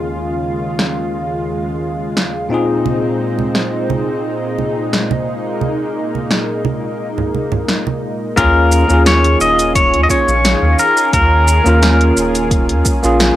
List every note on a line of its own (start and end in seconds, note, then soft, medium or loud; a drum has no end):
0.00 2.47 D#2 medium
0.00 2.47 C#3 medium
0.00 2.46 D#3 medium
0.00 8.33 G#3 medium
0.00 2.47 A#3 medium
0.00 2.47 C#4 medium
0.00 2.47 F4 medium
0.00 2.48 F4 medium
0.00 2.49 G#4 medium
0.79 snare medium
2.17 snare medium
2.49 7.98 A#2 medium
2.49 8.34 A#2 medium
2.49 7.98 C4 medium
2.49 5.25 C4 medium
2.49 7.99 D#4 medium
2.49 8.34 D#4 medium
2.49 8.00 F4 medium
2.54 8.00 G#4 medium
2.86 high conga medium
3.39 high conga medium
3.55 snare medium
3.90 high conga medium
4.58 high conga medium
4.93 snare medium
5.11 high conga medium
5.27 8.34 A#3 medium
5.61 high conga medium
6.15 high conga medium
6.31 snare medium
6.65 high conga medium
7.18 low conga medium
7.35 high conga medium
7.52 low conga medium
7.68 snare medium
7.87 high conga medium
8.36 8.84 D#2 loud
8.36 13.36 D#3 medium
8.36 8.82 A#3 loud
8.36 13.36 C#4 medium
8.36 8.83 C#4 medium
8.36 13.36 F4 medium
8.36 8.83 F4 medium
8.36 13.36 G#4 medium
8.36 8.84 G#4 loud
8.36 9.02 A#4 medium
8.36 kick loud
8.36 closed hi-hat medium
8.36 shaker soft
8.72 shaker medium
8.88 9.36 D#2 loud
8.88 10.05 A#3 medium
8.88 10.06 C#4 medium
8.88 10.07 F4 medium
8.88 shaker soft
8.93 10.07 G#4 medium
9.06 9.41 C#5 loud
9.06 snare loud
9.06 closed hi-hat medium
9.06 shaker soft
9.24 closed hi-hat soft
9.41 9.95 D#1 loud
9.41 9.75 D#5 loud
9.41 shaker medium
9.59 closed hi-hat soft
9.59 shaker soft
9.75 10.03 C#5 medium
9.75 kick loud
9.75 closed hi-hat medium
9.75 shaker soft
9.93 10.07 D#2 loud
9.93 closed hi-hat soft
10.03 10.10 D#5 medium
10.09 10.31 A#3 medium
10.09 10.31 C#4 medium
10.09 10.31 F4 medium
10.09 10.81 C#5 loud
10.09 10.32 C#5 medium
10.09 kick medium
10.09 shaker medium
10.28 10.55 A#1 loud
10.28 shaker soft
10.45 snare loud
10.45 closed hi-hat medium
10.45 shaker soft
10.62 10.75 D#2 medium
10.79 11.13 A#4 medium
10.79 shaker medium
10.97 shaker soft
11.13 11.60 D#2 loud
11.13 12.47 A#4 medium
11.13 kick loud
11.13 closed hi-hat medium
11.13 shaker soft
11.48 shaker medium
11.64 12.11 D#2 loud
11.64 12.99 A#3 medium
11.64 12.99 C#4 medium
11.64 13.00 F4 medium
11.64 shaker soft
11.69 13.01 A#4 loud
11.83 snare loud
11.83 closed hi-hat medium
11.83 shaker soft
12.01 closed hi-hat soft
12.17 12.71 D#1 medium
12.17 shaker medium
12.35 closed hi-hat soft
12.35 shaker soft
12.51 kick loud
12.51 closed hi-hat medium
12.51 shaker soft
12.69 12.82 D#2 medium
12.69 closed hi-hat soft
12.85 kick loud
12.85 shaker medium
13.03 13.31 A#1 loud
13.03 13.36 A#3 medium
13.03 13.36 C#4 medium
13.03 13.36 F4 medium
13.03 13.36 G#4 medium
13.03 shaker soft
13.20 snare loud
13.20 closed hi-hat medium
13.20 shaker soft